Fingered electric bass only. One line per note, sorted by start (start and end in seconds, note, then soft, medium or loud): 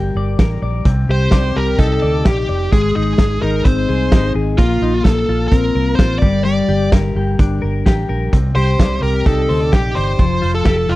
0.00 0.11 G1 medium
0.15 0.34 G1 medium
0.39 0.58 A1 medium
0.62 0.81 A#1 medium
0.85 1.05 C2 medium
1.09 1.28 C2 medium
1.32 1.51 C2 medium
1.56 1.75 C2 medium
1.79 1.98 C2 medium
2.03 2.22 D2 medium
2.26 2.45 A#1 medium
2.49 2.68 F1 medium
2.72 2.91 G#1 medium
2.96 3.15 G#1 medium
3.18 3.38 G#1 medium
3.42 3.61 G#1 medium
3.65 3.85 G#1 medium
3.89 4.08 C2 medium
4.12 4.31 G#1 medium
4.35 4.54 G#1 medium
4.59 4.78 A#1 loud
4.82 5.01 A#1 medium
5.05 5.24 A#1 medium
5.29 5.48 A#1 medium
5.51 5.71 A#1 medium
5.75 5.94 C2 medium
5.99 6.18 A1 medium
6.22 6.61 G1 medium
6.69 6.88 G1 medium
6.93 7.12 G1 medium
7.15 7.35 G1 medium
7.39 7.58 G1 medium
7.63 7.82 G1 medium
7.86 8.05 A1 medium
8.10 8.29 A#1 medium
8.33 8.52 C2 loud
8.55 8.75 C2 medium
8.80 8.99 C2 medium
9.03 9.22 C2 medium
9.26 9.45 C2 medium
9.50 9.69 D2 medium
9.73 9.92 A#1 medium
9.97 10.15 G1 medium
10.19 10.38 F1 medium
10.43 10.62 F1 medium
10.65 10.85 F1 loud
10.89 10.96 F1 medium